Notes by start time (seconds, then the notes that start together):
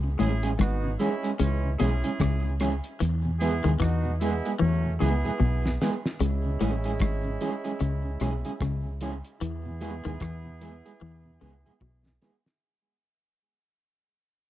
Already playing: C#2
0.04 C#3
0.19 A1 A2 E3 G#3 C#4 E4 G#4, closed hi-hat
0.43 G#3 C#4 E4 G#4, closed hi-hat
0.59 G#1 G#2 B3 D#4 F#4, kick, cross-stick, closed hi-hat
0.84 C#3
0.99 E3 G#3 C#4 E4 G#4, closed hi-hat
1.23 G#3 C#4 E4 G#4, closed hi-hat
1.39 C#2 C#3 E3 G#3 C#4, closed hi-hat
1.64 C#3
1.79 B1 B2 E3 G#3 C#4 E4 G#4, closed hi-hat
2.04 C#3 G#3 C#4 E4 G#4, closed hi-hat
2.20 C#2 C#3, kick, cross-stick, closed hi-hat
2.44 C#3
2.60 E3 G#3 C#4 E4 G#4, cross-stick, closed hi-hat
2.84 closed hi-hat
3.00 E2 E3, closed hi-hat
3.25 E2 B2
3.40 E3 G#3 B3 E4 G#4, closed hi-hat
3.64 D#2 E2 B2 D#3 G#3 B3 E4 G#4, closed hi-hat
3.80 E2 E3 B3 D#4 F#4, kick, cross-stick, closed hi-hat
4.05 E2 B2
4.20 E3 G#3 B3 E4 G#4, closed hi-hat
4.45 G#3 B3 E4 G#4, closed hi-hat
4.59 E2 E3 F#3 A3 C#4
4.85 E2 B2
5.00 C#2 C#3 E3 G#3 B3 E4 G#4
5.25 E2 B2 G#3 B3 E4 G#4
5.40 B1 B2, kick
5.66 E2 B2, snare
5.81 E3 G#3 B3 E4 G#4, snare
6.06 snare
6.20 C#2 C#3 G#3 C#4 E4, closed hi-hat
6.45 C#3
6.60 A1 A2 E3 G#3 C#4 E4 G#4, closed hi-hat
6.84 G#3 C#4 E4 G#4, closed hi-hat
6.99 G#1 G#2, kick, cross-stick, closed hi-hat
7.25 C#3
7.41 E3 G#3 C#4 E4 G#4, closed hi-hat
7.64 G#3 C#4 E4 G#4, closed hi-hat
7.80 C#2 C#3, closed hi-hat
8.05 C#3
8.20 B1 B2 E3 G#3 C#4 E4 G#4, cross-stick, closed hi-hat
8.45 C#3 G#3 C#4 E4 G#4, closed hi-hat
8.61 C#2 C#3, kick, cross-stick, closed hi-hat
8.86 C#3
9.01 E3 G#3 C#4 E4 G#4, closed hi-hat
9.25 closed hi-hat
9.40 E2 E3 B3 E4 G#4, closed hi-hat
9.65 E2 B2
9.81 E3 G#3 B3 E4 G#4, closed hi-hat
10.05 D#2 E2 B2 D#3 G#3 B3 E4 G#4, closed hi-hat
10.20 E2 E3, kick, cross-stick, closed hi-hat
10.45 E2 B2
10.61 E3 G#3 B3 E4 G#4, closed hi-hat
10.86 G#3 B3 E4 G#4, closed hi-hat
11.01 E2 E3
11.26 E2 B2
11.41 C#2 C#3 E3 G#3 B3 E4 G#4
11.66 E2 B2 G#3 B3 E4 G#4
11.81 B1 B2, kick
12.06 E2 B2, snare
12.22 E3 G#3 B3 E4 G#4, snare
12.46 snare